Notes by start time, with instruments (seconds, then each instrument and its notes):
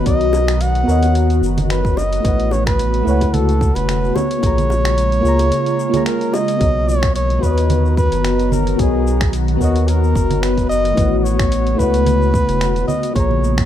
Already playing: ambient pad D#3 B3 F#4 A#5, fm electric piano B3 F#4 B4 C#5 D#5
0.02 fm electric piano B3 F#4 A#4
0.06 sub bass B1, fm electric piano C#5 D#5, muted trumpet D#5, kick, closed hi-hat, shaker
0.21 closed hi-hat
0.33 high bongo, shaker
0.48 finger snap, closed hi-hat, shaker
0.61 muted trumpet F#5, closed hi-hat, shaker
0.75 closed hi-hat
0.83 fm electric piano B3 F#4
0.88 sub bass D#2, fm electric piano A#4 C#5 D#5, shaker
1.02 closed hi-hat, high bongo, shaker
1.15 closed hi-hat, shaker
1.30 closed hi-hat, shaker
1.42 sub bass F#1, shaker
1.57 closed hi-hat, high bongo, low conga, shaker
1.70 muted trumpet B4, finger snap, closed hi-hat, shaker
1.85 kick, shaker
1.97 sub bass F#1, muted trumpet D#5, high bongo, shaker
2.13 closed hi-hat, shaker
2.20 fm electric piano A3 E4 B4, ambient pad A3
2.24 sub bass A1, ambient pad C#3 F#4, fm electric piano C#5 F#5, kick, closed hi-hat, shaker
2.40 closed hi-hat
2.51 muted trumpet C#5, high bongo, shaker
2.67 muted trumpet B4, finger snap, kick, closed hi-hat, shaker
2.79 closed hi-hat, shaker
2.94 closed hi-hat
3.03 sub bass C#2, fm electric piano A3 E4 B4
3.07 fm electric piano C#5 F#5, shaker
3.21 kick, closed hi-hat, high bongo, shaker
3.34 muted trumpet A4, closed hi-hat, low conga, shaker
3.49 closed hi-hat, shaker
3.61 kick, shaker
3.75 sub bass E1, muted trumpet B4, closed hi-hat, high bongo, shaker
3.89 finger snap, closed hi-hat, shaker
4.04 shaker
4.16 ambient pad C#3 G#3 A#3 F4, muted trumpet C#5, high bongo, low conga, shaker
4.31 closed hi-hat, shaker
4.39 fm electric piano A#3 F4 G#4
4.43 sub bass A#1, fm electric piano C#5 A#5, kick, closed hi-hat, shaker
4.58 closed hi-hat, low conga, shaker
4.70 high bongo, shaker
4.85 finger snap, closed hi-hat, shaker
4.98 closed hi-hat, shaker
5.12 closed hi-hat, shaker
5.21 sub bass C#2, fm electric piano A#3 F4 G#4
5.25 fm electric piano C#5 A#5, shaker
5.39 closed hi-hat, high bongo, shaker
5.52 closed hi-hat, shaker
5.66 closed hi-hat, shaker
5.79 shaker
5.89 fm electric piano A#3 F4 G#4
5.94 fm electric piano C#5 A#5, closed hi-hat, high bongo, low conga, shaker
6.06 muted trumpet A#4, finger snap, closed hi-hat, shaker
6.21 closed hi-hat, shaker
6.34 muted trumpet D#5, high bongo, shaker
6.48 closed hi-hat, shaker
6.57 sub bass B1, ambient pad D#3 F#4 A#5, fm electric piano B3 F#4 A#4, closed hi-hat
6.61 ambient pad B3, fm electric piano C#5 D#5, kick, shaker
6.89 muted trumpet C#5, shaker
7.03 finger snap, kick, closed hi-hat, shaker
7.16 muted trumpet C#5, closed hi-hat, shaker
7.30 closed hi-hat
7.39 sub bass D#2, fm electric piano B3 F#4 B4
7.43 muted trumpet B4, fm electric piano C#5 D#5, kick, shaker
7.58 closed hi-hat, shaker
7.70 closed hi-hat, low conga, shaker
7.85 shaker
7.97 muted trumpet B4, kick, shaker
8.12 sub bass F#1, closed hi-hat, shaker
8.25 finger snap, closed hi-hat, shaker
8.39 closed hi-hat, shaker
8.52 muted trumpet A#4, low conga, shaker
8.67 closed hi-hat, shaker
8.76 sub bass B1, fm electric piano B3 F#4 A#4, kick, closed hi-hat
8.80 muted trumpet G#4, fm electric piano C#5 D#5, shaker
9.07 shaker
9.21 finger snap, kick, closed hi-hat, shaker
9.33 closed hi-hat, shaker
9.48 closed hi-hat
9.57 sub bass D#2, fm electric piano B3 F#4 A#4
9.61 muted trumpet F#4, fm electric piano C#5 D#5, kick, shaker
9.76 closed hi-hat, shaker
9.88 muted trumpet A#4, closed hi-hat, shaker
10.04 shaker
10.15 sub bass F#1, kick, shaker
10.31 closed hi-hat, low conga, shaker
10.42 muted trumpet B4, finger snap, closed hi-hat, shaker
10.57 kick, closed hi-hat, shaker
10.69 sub bass F#1, muted trumpet D#5, shaker
10.85 closed hi-hat, shaker
10.93 ambient pad C#3, fm electric piano A3 E4 B4
10.97 sub bass A1, ambient pad A3, fm electric piano C#5 F#5, kick, closed hi-hat, shaker
11.19 muted trumpet D#5
11.24 muted trumpet C#5, shaker
11.39 finger snap, kick, closed hi-hat, shaker
11.52 closed hi-hat, shaker
11.67 closed hi-hat
11.75 sub bass C#2, fm electric piano A3 E4, muted trumpet B4
11.79 fm electric piano B4 C#5 F#5, kick, shaker
11.94 closed hi-hat, shaker
12.06 closed hi-hat, low conga, shaker
12.22 shaker
12.34 kick, shaker
12.48 sub bass E1, closed hi-hat, shaker
12.61 finger snap, closed hi-hat, shaker
12.76 closed hi-hat, shaker
12.88 ambient pad G#3 A#3 F4, muted trumpet D#5, low conga, shaker
13.03 closed hi-hat, shaker
13.11 fm electric piano A#3 F4
13.15 sub bass A#1, fm electric piano G#4 C#5, muted trumpet C#5, kick, closed hi-hat, shaker
13.19 fm electric piano A#5
13.31 low conga
13.44 shaker
13.58 finger snap, kick, closed hi-hat, shaker